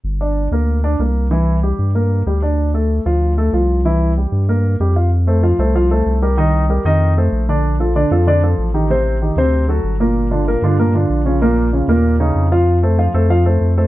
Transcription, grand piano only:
X:1
M:4/4
L:1/8
Q:1/4=190
K:F
V:1 name="Grand piano"
z [Dd]2 [B,B]2 [Dd] [B,B]2 | [E,E]2 [G,G]2 [B,B]2 [G,G] [Dd]- | [Dd] [A,A]2 [F,F]2 [A,A] [F,F]2 | [E,E]2 [G,G]2 [B,B]2 [G,G] [Ff] |
z [A,Ac] [F,Ff] [A,Ac] [F,Ff] [A,Ac]2 [G,GB] | [_E,_E_e]2 [G,GB] [E,Ee]2 [A,Ac]2 [D,Dd]- | [D,Dd] [F,FA] [D,Dd] [F,FA] [D,Dd] [F,FA]2 [_E,_EG] | [C,Cc]2 [_E,_EG] [C,Cc]2 [^F,^FA]2 [B,,B,B]- |
[B,,B,B] [D,DF] [B,,B,B] [D,DF] [B,,B,B] [D,DF]2 [_D,_DF] | [B,,B,B]2 [_D,_DF] [B,,B,B]2 [D,D_E]2 [F,Ff]- | [F,Ff] [A,Ac] [F,Ff] [A,Ac] [F,Ff] [A,Ac]2 [A,Ac] |]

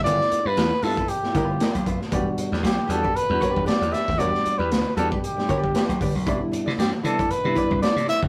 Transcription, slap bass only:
X:1
M:4/4
L:1/16
Q:"Swing 16ths" 1/4=116
K:Em
V:1 name="Slap bass" clef=bass
G,,, z2 G,, E,, z G,, z3 G,,,2 z B,,,2 z | E,,, z2 E,, B,,, z E,, z2 E,, z E,,, z E,, z ^D,,, | E,,, z2 E,, D,, z E,, z3 G,,,2 z B,,, G,,, B,,, | C,, z2 C, G,, z C, z2 C, z C,, z C, z F,,, |]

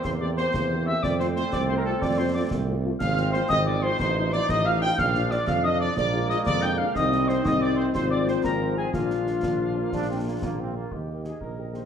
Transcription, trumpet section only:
X:1
M:6/8
L:1/16
Q:3/8=121
K:Fmix
V:1 name="Trumpet section"
c2 d2 c6 =e2 | d2 c2 c2 d2 c B A2 | d2 c2 d2 z6 | [K:Bbmix] f4 c2 e2 d2 c2 |
c4 d2 e2 f2 g2 | f4 d2 f2 e2 d2 | d4 e2 d2 g2 f2 | e4 c2 e2 d2 c2 |
c2 d2 c2 B4 A2 | F12- | F8- F2 F2 | G4 A2 B4 c2 |]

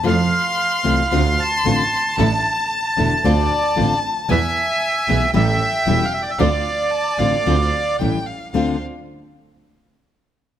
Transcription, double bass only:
X:1
M:4/4
L:1/8
Q:1/4=113
K:Dm
V:1 name="Double bass" clef=bass
F,, z2 C,, D,, z A,,, z | A,,, z2 E,,, D,, z A,,, z | E,, z2 =B,,, A,,, z E,,, z | D,, z2 A,,, D,, z A,,, z |
D,, z6 z |]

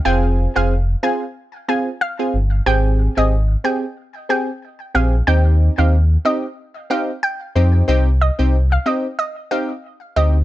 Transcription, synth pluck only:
X:1
M:4/4
L:1/16
Q:"Swing 16ths" 1/4=92
K:Cm
V:1 name="Synth pluck"
g z2 f z2 a z3 a z f3 z | g z2 e z2 g z3 g z3 f z | g z2 f z2 e z3 f z g3 z | z2 e z2 f e z e z f z3 e z |]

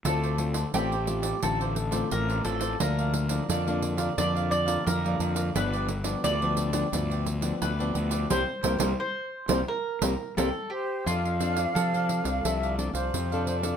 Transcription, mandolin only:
X:1
M:4/4
L:1/8
Q:1/4=87
K:F
V:1 name="Mandolin"
A2 G2 A2 B A | B4 d d B2 | =B2 d4 B2 | c2 c2 B2 A G |
F2 A6 |]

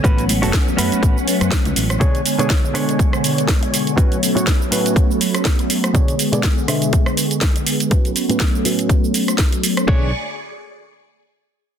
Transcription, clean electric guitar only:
X:1
M:4/4
L:1/16
Q:"Swing 16ths" 1/4=122
K:Bdor
V:1 name="Clean electric guitar"
[CFB]2 z [CFA] z2 [CFB]3 z6 z | [B,,DGc]2 z [B,,DGc] z2 [B,,DGc]3 z6 z | [A,,CFB]2 z [A,,CFc] z2 [A,,CFB]3 z6 z | [B,,DGc]2 z [B,,DGd] z2 [B,,DGe]3 z6 z |
[A,,CFB]2 z [A,,CFB] z2 [A,,CFB]3 z6 z | [DGc]2 z12 z2 |]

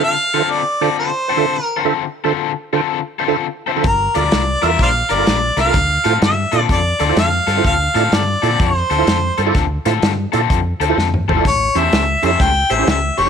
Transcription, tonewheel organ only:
X:1
M:4/4
L:1/16
Q:"Swing" 1/4=126
K:Dm
V:1 name="Tonewheel organ"
z2 [D,FAce] z3 [D,FAcd] z3 [cg] [D,FAce] z2 [cf] [D,FAce] | z2 [D,FAce] z3 [D,FAcg] z3 [ce] [D,FAce] z2 [ce] [D,FAce] | z2 [FABd] z3 [FABe] z3 [Bd] [FABf] z2 [Be] [FABe] | z2 [EFAc] z3 [EFAd] z3 [Ad] [EFAc] z2 [Ac] [EFAc] |
z2 [EFAd] z3 [EFAd] z3 [Ac] [EFAc] z2 [Ac] [EFAd] | z2 [EFAc] z3 [EFAd] z3 [Ac] [EFAc] z2 [Ac] [EFAd] | z2 [^CEG^B] z3 [CEGA] z3 [GB] [CEGB] z2 [GB] [CEG] |]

